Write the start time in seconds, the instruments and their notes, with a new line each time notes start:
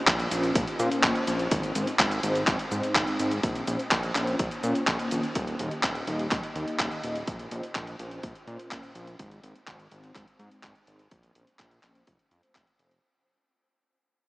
0.07 analog synth bass A#1, kick, clap, closed hi-hat, cabasa
0.20 closed hi-hat, cabasa
0.31 analog synth bass A#1, analog polysynth A#2 A#3 C#4 F4 C5, closed hi-hat, cabasa
0.43 closed hi-hat, cabasa
0.55 analog synth bass A#1, kick, closed hi-hat, cabasa
0.67 closed hi-hat
0.79 analog polysynth A#2 A#3 C#4 F4 C5, analog synth bass A#2, closed hi-hat, cabasa
0.92 closed hi-hat, cabasa
1.03 analog synth bass A#1, kick, clap, closed hi-hat, cabasa
1.15 closed hi-hat
1.27 analog synth bass A#1, analog polysynth A#3 C#4 F4 C5, closed hi-hat, cabasa
1.39 closed hi-hat, cabasa
1.51 analog synth bass G#1, kick, closed hi-hat, cabasa
1.63 closed hi-hat, cabasa
1.75 analog synth bass G#1, analog polysynth G#2 G#3 C4 D#4 C5, closed hi-hat, cabasa
1.87 closed hi-hat, cabasa
1.99 analog synth bass G#1, kick, clap, closed hi-hat, cabasa
2.11 closed hi-hat, cabasa
2.23 analog synth bass G#1, analog polysynth G#2 G#3 C4 D#4 C5, closed hi-hat, cabasa
2.35 closed hi-hat, cabasa
2.47 analog synth bass G#1, kick, clap, closed hi-hat, cabasa
2.59 closed hi-hat
2.71 analog synth bass G#2, analog polysynth G#2 G#3 C4 D#4 C5, closed hi-hat, cabasa
2.83 closed hi-hat, cabasa
2.95 analog synth bass G#1, kick, clap, closed hi-hat, cabasa
3.07 closed hi-hat
3.19 analog synth bass G#1, analog polysynth G#3 C4 D#4 C5, closed hi-hat, cabasa
3.31 closed hi-hat, cabasa
3.43 analog synth bass A#1, kick, closed hi-hat, cabasa
3.55 closed hi-hat, cabasa
3.67 analog synth bass A#1, analog polysynth A#2 A#3 C#4 F4 C5, closed hi-hat, cabasa
3.79 closed hi-hat, cabasa
3.91 analog synth bass A#1, kick, clap, closed hi-hat, cabasa
4.03 closed hi-hat, cabasa
4.15 analog synth bass A#1, analog polysynth A#2 A#3 C#4 F4, clap, closed hi-hat, cabasa
4.27 closed hi-hat, cabasa
4.39 analog synth bass A#1, kick, closed hi-hat, cabasa
4.51 closed hi-hat, cabasa
4.63 analog polysynth A#2 A#3 C#4 F4 C#5, analog synth bass A#2, closed hi-hat, cabasa
4.75 closed hi-hat, cabasa
4.87 analog synth bass A#1, kick, clap, closed hi-hat, cabasa
4.99 analog polysynth A#2 A#3 C#4 F4 C5, closed hi-hat, cabasa
5.11 analog synth bass A#1, analog polysynth D#3 A#3 C#4 F4 D#5, closed hi-hat, cabasa
5.23 closed hi-hat, cabasa
5.35 analog synth bass D#1, kick, closed hi-hat
5.47 closed hi-hat
5.59 analog synth bass D#1, analog polysynth D#3 A#3 D#4 G4 D#5, closed hi-hat
5.71 closed hi-hat
5.83 analog synth bass D#1, kick, clap, closed hi-hat
5.95 closed hi-hat
6.07 analog synth bass D#1, analog polysynth D#3 A#3 D#4 G4 D#5, closed hi-hat
6.19 closed hi-hat
6.31 analog synth bass D#1, kick, clap, closed hi-hat
6.43 closed hi-hat
6.55 analog synth bass D#2, analog polysynth D#3 A#3 D#4 G4 D#5, closed hi-hat
6.68 closed hi-hat
6.80 analog synth bass D#1, kick, clap, closed hi-hat
6.92 closed hi-hat
7.03 analog synth bass D#1, analog polysynth A#2 A#3 D#4 G4 D#5, closed hi-hat
7.16 closed hi-hat
7.27 analog synth bass A#1, kick, closed hi-hat
7.39 closed hi-hat
7.51 analog synth bass A#1, analog polysynth A#2 A#3 C#4 F4 C5, closed hi-hat
7.63 closed hi-hat
7.75 analog synth bass A#1, kick, clap, closed hi-hat
7.87 closed hi-hat
7.99 analog synth bass A#1, analog polysynth A#2 A#3 C#4 F4 C5, closed hi-hat
8.11 closed hi-hat
8.23 analog synth bass A#1, kick, closed hi-hat
8.35 closed hi-hat
8.47 analog synth bass A#2, analog polysynth A#2 A#3 C#4 F4 C5, closed hi-hat
8.59 closed hi-hat
8.71 analog synth bass A#1, kick, clap, closed hi-hat
8.83 closed hi-hat
8.95 analog synth bass A#1, analog polysynth A#3 C#4 F4 C5, closed hi-hat
9.07 closed hi-hat
9.19 analog synth bass G#1, kick, closed hi-hat
9.31 closed hi-hat
9.43 analog synth bass G#1, analog polysynth G#2 G#3 C4 D#4 C5, closed hi-hat
9.55 closed hi-hat
9.67 analog synth bass G#1, kick, clap, closed hi-hat
9.80 closed hi-hat
9.91 analog synth bass G#1, analog polysynth G#2 G#3 C4 D#4 C5, closed hi-hat
10.04 closed hi-hat
10.16 analog synth bass G#1, kick, clap, closed hi-hat
10.28 closed hi-hat
10.39 analog synth bass G#2, analog polysynth G#2 G#3 C4 D#4 C5, closed hi-hat
10.51 closed hi-hat
10.63 analog synth bass G#1, kick, clap, closed hi-hat
10.75 closed hi-hat
10.87 analog synth bass G#1, analog polysynth G#3 C4 D#4 C5, closed hi-hat
10.99 closed hi-hat
11.11 analog synth bass A#1, kick, closed hi-hat
11.23 closed hi-hat
11.35 analog synth bass A#1, analog polysynth A#2 A#3 C#4 F4 C5, closed hi-hat
11.47 closed hi-hat
11.59 analog synth bass A#1, kick, clap, closed hi-hat
11.71 closed hi-hat
11.83 analog synth bass A#1, analog polysynth A#3 C#4 F4 C5, clap, closed hi-hat
11.95 closed hi-hat
12.07 analog synth bass F1, kick, closed hi-hat
12.19 closed hi-hat
12.31 analog synth bass F2, analog polysynth A3 C4 F4 C5, closed hi-hat
12.43 closed hi-hat
12.55 analog synth bass F1, kick, clap, closed hi-hat
12.67 closed hi-hat
12.79 analog synth bass F1, analog polysynth A3 C4 F4 C5, closed hi-hat
12.91 closed hi-hat